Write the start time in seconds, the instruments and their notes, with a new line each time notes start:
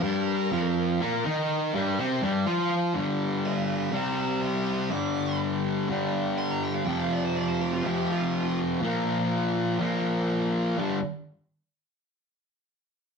Already playing: lead electric guitar A#4
0.02 distorted electric guitar G2 G3
0.51 distorted electric guitar F2 F3
1.01 distorted electric guitar A#2 A#3
1.25 distorted electric guitar D#3 D#4
1.74 distorted electric guitar G2 G3
1.99 distorted electric guitar C3 C4
2.22 distorted electric guitar G2 G3
2.46 distorted electric guitar F3 F4
2.94 distorted electric guitar G2 D3 G3
3.45 lead electric guitar D5 F5
3.71 lead electric guitar D5 F5
3.92 distorted electric guitar C3 G3 C4
3.96 lead electric guitar G5 A#5
4.19 lead electric guitar G5 A#5
4.43 lead electric guitar E5 C6
4.67 lead electric guitar E5 C6
4.90 distorted electric guitar G2 D3 G3, lead electric guitar D6
5.88 distorted electric guitar G2 D3 G3
6.38 lead electric guitar C6
6.51 lead electric guitar A#5
6.64 lead electric guitar G5
6.75 lead electric guitar F5
6.85 distorted electric guitar F2 C3 F3, lead electric guitar G5
7.00 lead electric guitar F5
7.12 lead electric guitar D5
7.25 lead electric guitar C5
7.35 lead electric guitar D5
7.48 lead electric guitar C5
7.61 lead electric guitar G4
7.73 lead electric guitar F4
7.84 distorted electric guitar F2 C3 F3, lead electric guitar G4
8.11 lead electric guitar F4
8.81 distorted electric guitar A#2 F3 A#3
9.79 distorted electric guitar A#2 F3 A#3
10.78 distorted electric guitar G2 D3 G3